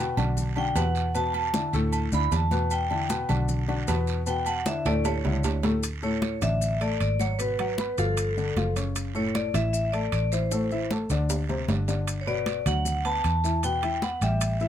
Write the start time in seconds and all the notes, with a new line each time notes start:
Already playing: E2 G5
0.00 B2 B3 B4
0.17 B1 D3 D4 F#4, low conga, low agogo, short guiro, maracas
0.37 high conga, low conga, long guiro, maracas
0.56 D3 D4 F#4 G5, high conga, low agogo
0.75 E2 B2 B3 B4 F#5, high conga, low timbale, low agogo, short guiro, maracas
0.95 short guiro, maracas
1.14 B2 B3 B4 A5, high conga, low agogo, long guiro, maracas
1.34 high conga, low agogo
1.54 D3 D4 E4, high conga, low timbale, short guiro, maracas
1.73 D2 A2 A3 A4, high conga, low agogo, short guiro, maracas
1.93 high conga, low agogo, long guiro, maracas
2.12 D2 D3 D4 E4 B5, high conga, maracas
2.32 E2 A5, high conga, low timbale, low agogo, short guiro, maracas
2.51 B2 B3 B4, high conga, short guiro, maracas
2.71 G5, high conga, low agogo, long guiro, maracas
2.90 D3 D4 E4, high conga, low agogo
3.10 B2 B3 B4, high conga, low timbale, low agogo, short guiro, maracas
3.29 B1 D3 D4 F#4, low conga, low agogo, short guiro, maracas
3.48 high conga, low conga, long guiro, maracas
3.68 D3 D4 F#4, high conga, low agogo
3.88 E2 B2 B3 B4, high conga, low timbale, low agogo, short guiro, maracas
4.07 short guiro, maracas
4.26 B2 B3 B4 G5, high conga, low agogo, long guiro, maracas
4.46 F#5, high conga, low agogo, maracas
4.66 D3 D4 E4 E5, high conga, high timbale, short guiro, maracas
4.85 D2 A2 A3 A4 D5, high conga, high timbale, low agogo, short guiro, maracas
5.05 C#5, high conga, low timbale, low agogo, long guiro, maracas
5.25 C#2 D3 D4 E4, high conga, low timbale
5.44 D2, high conga, low timbale, low agogo, short guiro, maracas
5.63 A2 A3 A4, high conga, low timbale, short guiro, maracas
5.83 high conga, high timbale, long guiro, maracas
6.03 A2 A3 A4 C#5, high conga, maracas
6.22 high conga, high timbale, short guiro, maracas
6.41 A1 D3 D4 D5 E5, high conga, low conga, high timbale, short guiro, maracas
6.61 high conga, long guiro, maracas
6.80 A3 A4 D5 A5, high conga, high timbale, maracas
7.00 G#1 D5, high conga, high timbale, short guiro, maracas
7.19 F#3 F#4 C#5 F#5, high conga, short guiro, maracas
7.39 B2 B3 B4, high conga, high timbale, long guiro, maracas
7.59 F#3 F#4 F#5, high conga, high timbale, maracas
7.78 B3 B4 B5, high conga, short guiro, maracas
7.98 G1 F3 F4 A4 F5, high conga, high timbale, short guiro, maracas
8.17 high conga, high timbale, long guiro, maracas
8.37 D3 D4 D5, high conga, maracas
8.56 F#1 F3 F4 F5, high conga, high timbale, short guiro, maracas
8.76 C#3 C#4 C#5, high timbale, short guiro, maracas
8.96 high conga, high timbale, long guiro, maracas
9.15 A2 A3 A4 C#5, high conga, maracas
9.35 D5, high conga, high timbale, short guiro, maracas
9.54 A1 E3 E4 E5, high conga, low conga, high timbale, short guiro, maracas
9.73 E5, high conga, long guiro, maracas
9.92 A3 A4 D5 A5, high conga, high timbale, maracas
10.12 A1 D5, high conga, high timbale, short guiro, maracas
10.32 E3 E4 C5 E5, short guiro, maracas
10.51 A2 A3 A4, high conga, high timbale, long guiro, maracas
10.71 E3 E4 E5, high conga, maracas
10.91 A3 A4 A5, high conga, high timbale, short guiro, maracas
11.10 D2 D3 D4 D5, high conga, high timbale, short guiro, maracas
11.30 high conga, low timbale, long guiro, maracas
11.49 C3 C4 C5, high conga, low timbale, maracas
11.68 G1 D3 D4 D5, high conga, low timbale, short guiro, maracas
11.88 D3 D4 D5, low timbale, short guiro, maracas
12.07 high conga, high timbale, long guiro, maracas
12.21 C#5
12.27 B2 B3 B4 D5, high conga, maracas
12.46 high conga, high timbale, short guiro, maracas
12.66 D2 F#3 F#4 F#5, high conga, low conga, high timbale, short guiro, maracas
12.85 high conga, low conga, long guiro, maracas
13.05 B3 B4 A5 B5, high conga, high timbale, maracas
13.24 E2, high conga, high timbale, short guiro, maracas
13.44 E3 E4 E5, short guiro, maracas
13.63 B2 B3 B4 G5, high conga, high timbale, long guiro, maracas
13.83 E3 E4 E5, high conga, high timbale, maracas
14.02 B3 B4 F#5 B5, high conga, short guiro, maracas
14.21 A1 G3 G4 E5 G5, high conga, high timbale, short guiro, maracas
14.41 high conga, high timbale, long guiro, maracas
14.60 E3 E4 E5, high conga, maracas